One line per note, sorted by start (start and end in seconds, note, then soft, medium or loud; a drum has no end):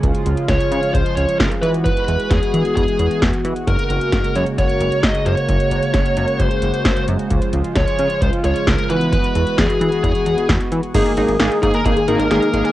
0.00 0.13 C#2 loud
0.00 1.59 C#3 medium
0.00 1.61 F3 medium
0.00 3.63 G#3 medium
0.00 1.61 F4 medium
0.00 kick loud
0.00 closed hi-hat medium
0.15 closed hi-hat medium
0.26 0.35 C#2 medium
0.26 closed hi-hat medium
0.38 closed hi-hat soft
0.49 0.58 C#2 loud
0.49 0.94 C#5 loud
0.49 kick loud
0.49 snare loud
0.49 closed hi-hat medium
0.61 closed hi-hat medium
0.72 0.81 C#3 medium
0.72 closed hi-hat medium
0.83 closed hi-hat soft
0.94 1.04 C#2 loud
0.94 1.15 C5 loud
0.94 kick loud
0.94 closed hi-hat medium
1.06 closed hi-hat soft
1.16 1.26 C#2 loud
1.16 1.38 C#5 medium
1.16 closed hi-hat medium
1.29 closed hi-hat medium
1.39 1.49 C#2 loud
1.39 1.46 A#4 medium
1.39 kick loud
1.39 snare loud
1.39 closed hi-hat medium
1.52 closed hi-hat soft
1.62 1.90 E3 loud
1.62 3.65 E3 medium
1.62 3.65 B3 medium
1.62 7.27 F#4 medium
1.62 1.68 B4 medium
1.62 closed hi-hat medium
1.74 closed hi-hat soft
1.84 2.32 B4 loud
1.84 kick loud
1.84 closed hi-hat medium
1.97 closed hi-hat medium
2.08 2.17 E2 loud
2.08 closed hi-hat medium
2.20 closed hi-hat soft
2.30 2.40 E2 loud
2.30 2.74 G#4 medium
2.30 kick loud
2.30 snare loud
2.30 closed hi-hat medium
2.43 closed hi-hat medium
2.54 2.63 E3 loud
2.54 closed hi-hat medium
2.65 closed hi-hat soft
2.76 2.85 E2 loud
2.76 3.18 G#4 medium
2.76 kick medium
2.76 closed hi-hat medium
2.88 closed hi-hat soft
2.99 3.08 E2 medium
2.99 closed hi-hat medium
3.11 closed hi-hat medium
3.22 3.31 E2 loud
3.22 kick loud
3.22 snare loud
3.22 closed hi-hat medium
3.33 closed hi-hat soft
3.44 3.54 E3 medium
3.44 closed hi-hat medium
3.56 closed hi-hat soft
3.67 3.76 F#1 loud
3.67 8.86 C#3 medium
3.67 10.90 G#3 medium
3.67 7.27 A#3 medium
3.67 4.38 A#4 medium
3.67 kick loud
3.67 closed hi-hat medium
3.79 closed hi-hat medium
3.90 3.99 F#1 loud
3.90 closed hi-hat medium
4.01 closed hi-hat soft
4.12 4.22 F#1 loud
4.12 kick loud
4.12 snare loud
4.12 closed hi-hat medium
4.24 closed hi-hat soft
4.35 4.45 F#2 loud
4.35 4.42 C#5 medium
4.35 closed hi-hat medium
4.46 closed hi-hat soft
4.58 4.67 F#1 loud
4.58 5.04 C#5 loud
4.58 kick medium
4.58 closed hi-hat medium
4.69 closed hi-hat soft
4.80 4.90 F#1 loud
4.80 closed hi-hat medium
4.92 closed hi-hat medium
5.03 5.13 F#1 loud
5.03 5.25 D#5 loud
5.03 kick loud
5.03 snare loud
5.03 closed hi-hat medium
5.15 closed hi-hat medium
5.26 5.35 F#2 loud
5.26 6.40 C#5 medium
5.26 closed hi-hat medium
5.37 closed hi-hat soft
5.49 5.58 F#1 loud
5.49 kick loud
5.49 closed hi-hat medium
5.60 closed hi-hat medium
5.71 5.81 F#1 medium
5.71 closed hi-hat medium
5.83 closed hi-hat soft
5.94 6.03 F#1 loud
5.94 kick loud
5.94 snare loud
5.94 closed hi-hat medium
6.06 closed hi-hat medium
6.17 6.26 F#2 medium
6.17 closed hi-hat medium
6.28 closed hi-hat soft
6.40 6.49 F#1 loud
6.40 7.04 C5 medium
6.40 kick medium
6.40 closed hi-hat medium
6.51 closed hi-hat soft
6.62 6.72 F#1 loud
6.62 closed hi-hat medium
6.74 closed hi-hat medium
6.85 6.94 F#1 loud
6.85 kick loud
6.85 snare loud
6.85 closed hi-hat medium
6.97 closed hi-hat medium
7.08 7.17 F#2 loud
7.08 closed hi-hat medium
7.19 closed hi-hat soft
7.30 7.40 C#2 loud
7.30 8.88 F3 medium
7.30 8.88 F4 medium
7.30 kick loud
7.30 closed hi-hat medium
7.42 closed hi-hat medium
7.53 7.63 C#2 medium
7.53 closed hi-hat medium
7.64 closed hi-hat soft
7.76 7.85 C#2 loud
7.76 8.22 C#5 loud
7.76 kick loud
7.76 snare loud
7.76 closed hi-hat medium
7.88 closed hi-hat medium
7.99 8.08 C#3 loud
7.99 closed hi-hat medium
8.10 closed hi-hat soft
8.22 8.31 C#2 loud
8.22 8.28 C5 loud
8.22 kick loud
8.22 closed hi-hat medium
8.33 closed hi-hat soft
8.44 8.54 C#2 loud
8.44 8.68 C#5 medium
8.44 closed hi-hat medium
8.56 closed hi-hat medium
8.67 8.76 C#2 loud
8.67 8.90 A#4 medium
8.67 kick loud
8.67 snare loud
8.67 closed hi-hat medium
8.79 closed hi-hat soft
8.90 10.92 E3 medium
8.90 9.17 E3 loud
8.90 10.92 B3 medium
8.90 10.92 F#4 medium
8.90 9.12 B4 medium
8.90 closed hi-hat medium
9.01 closed hi-hat soft
9.13 9.58 B4 loud
9.13 kick loud
9.13 closed hi-hat medium
9.24 closed hi-hat medium
9.35 9.45 E2 loud
9.35 closed hi-hat medium
9.47 closed hi-hat soft
9.58 9.67 E2 medium
9.58 10.03 G#4 medium
9.58 kick loud
9.58 snare loud
9.58 closed hi-hat medium
9.70 closed hi-hat medium
9.81 9.90 E3 medium
9.81 closed hi-hat medium
9.92 closed hi-hat soft
10.04 10.13 E2 loud
10.04 10.46 G#4 medium
10.04 kick loud
10.04 closed hi-hat medium
10.15 closed hi-hat soft
10.26 10.35 E2 medium
10.26 closed hi-hat medium
10.38 closed hi-hat medium
10.49 10.58 E2 loud
10.49 kick loud
10.49 snare loud
10.49 closed hi-hat medium
10.60 closed hi-hat soft
10.72 10.81 E3 loud
10.72 closed hi-hat medium
10.83 closed hi-hat soft
10.94 11.04 G#1 loud
10.94 12.72 D#3 medium
10.94 12.72 G#3 medium
10.94 11.04 G#3 medium
10.94 12.72 A#3 medium
10.94 11.13 A#3 loud
10.94 11.13 D#4 loud
10.94 12.72 G#4 medium
10.94 11.13 G#4 loud
10.94 kick loud
10.94 closed hi-hat medium
10.94 crash medium
11.06 11.15 A#3 medium
11.06 closed hi-hat medium
11.17 11.26 G#1 loud
11.17 11.35 A#3 medium
11.17 11.26 D#4 medium
11.17 11.35 D#4 medium
11.17 11.35 G#4 loud
11.17 closed hi-hat medium
11.28 11.38 G#1 medium
11.28 11.38 G#4 medium
11.28 closed hi-hat medium
11.39 11.49 G#1 loud
11.39 11.58 A#3 medium
11.39 11.49 D#4 medium
11.39 11.58 D#4 medium
11.39 11.58 G#4 loud
11.39 snare loud
11.39 closed hi-hat medium
11.51 closed hi-hat medium
11.63 11.72 G#2 loud
11.63 11.81 A#3 medium
11.63 11.81 D#4 medium
11.63 11.75 G#4 medium
11.63 11.81 G#4 medium
11.63 kick medium
11.63 closed hi-hat medium
11.74 11.83 A#3 medium
11.74 11.85 A#4 medium
11.74 closed hi-hat soft
11.85 11.94 G#1 loud
11.85 12.04 A#3 medium
11.85 12.04 D#4 medium
11.85 11.95 D#4 medium
11.85 12.04 G#4 medium
11.85 12.19 G#4 medium
11.85 kick medium
11.85 closed hi-hat medium
11.97 12.06 G#4 medium
11.97 closed hi-hat soft
12.08 12.17 G#1 loud
12.08 12.26 A#3 medium
12.08 12.26 D#4 medium
12.08 12.17 D#4 medium
12.08 12.26 A#4 loud
12.08 closed hi-hat medium
12.19 12.29 G#1 medium
12.19 12.29 A#3 medium
12.19 12.64 A#4 medium
12.19 closed hi-hat medium
12.31 12.40 G#1 medium
12.31 12.40 G#3 medium
12.31 12.49 A#3 loud
12.31 12.49 D#4 medium
12.31 12.49 G#4 loud
12.31 snare loud
12.31 closed hi-hat medium
12.42 12.51 A#3 medium
12.42 closed hi-hat soft
12.53 12.63 G#1 medium
12.53 12.72 A#3 medium
12.53 12.72 D#4 medium
12.53 12.72 G#4 medium
12.53 closed hi-hat medium
12.65 12.72 G#4 medium
12.65 12.72 A#4 medium
12.65 closed hi-hat soft